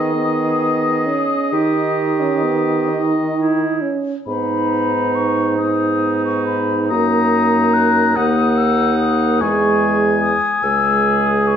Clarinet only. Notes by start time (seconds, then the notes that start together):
Already playing: G#4
0.16 G#4
1.52 G4
3.36 E4
4.28 D#4
5.60 D#4
6.91 D#4
8.17 D#4
9.41 G#4
10.63 G#4